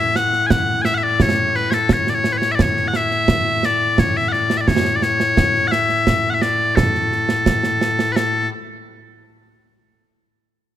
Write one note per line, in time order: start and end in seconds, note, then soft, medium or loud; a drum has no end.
0.00 8.49 A2 medium
0.00 0.16 E5 medium
0.16 0.47 F#5 loud
0.16 snare medium
0.33 snare soft
0.47 0.82 F#5 loud
0.47 0.51 G#5 loud
0.47 concert bass drum medium
0.47 snare loud
0.82 0.94 E5 loud
0.82 0.85 G#5 loud
0.82 snare medium
0.94 1.03 E5 medium
0.94 0.98 F#5 medium
1.03 1.22 D5 loud
1.20 1.56 C#5 medium
1.20 concert bass drum medium
1.20 snare medium
1.55 1.70 B4 medium
1.55 snare soft
1.70 1.93 A4 medium
1.70 1.74 C#5 medium
1.70 snare medium
1.89 2.10 C#5 medium
1.89 concert bass drum medium
1.89 snare loud
2.07 2.15 D5 medium
2.07 snare medium
2.15 2.32 C#5 loud
2.24 snare medium
2.32 2.37 B4 medium
2.37 2.52 C#5 medium
2.42 snare medium
2.52 2.62 D5 medium
2.52 2.55 E5 medium
2.59 2.88 C#5 medium
2.59 concert bass drum medium
2.59 snare medium
2.77 snare soft
2.88 2.96 F#5 medium
2.94 3.65 E5 loud
2.94 snare medium
3.11 snare soft
3.28 concert bass drum medium
3.28 snare loud
3.63 3.99 D5 loud
3.63 snare medium
3.98 4.17 C#5 medium
3.98 concert bass drum medium
3.98 snare loud
4.17 4.28 E5 medium
4.28 4.32 F#5 medium
4.32 4.57 D5 medium
4.32 snare soft
4.50 snare medium
4.57 4.68 D5 medium
4.57 4.61 E5 medium
4.68 4.96 C#5 medium
4.68 concert bass drum medium
4.68 snare loud
4.85 snare medium
4.96 5.03 D5 medium
5.02 5.68 C#5 loud
5.02 snare medium
5.20 snare medium
5.37 concert bass drum medium
5.37 snare medium
5.55 snare soft
5.68 6.30 E5 loud
5.68 5.71 F#5 loud
5.72 snare medium
5.89 snare soft
6.07 concert bass drum soft
6.07 snare medium
6.30 6.34 F#5 medium
6.34 6.42 E5 medium
6.42 6.76 D5 medium
6.42 snare medium
6.76 8.12 A4 medium
6.76 concert bass drum medium
6.76 snare loud
6.95 snare soft
7.12 snare soft
7.29 snare medium
7.46 concert bass drum medium
7.46 snare loud
7.63 snare medium
7.81 snare medium
7.99 snare medium
8.12 8.49 A4 medium
8.12 8.16 B4 medium
8.16 snare medium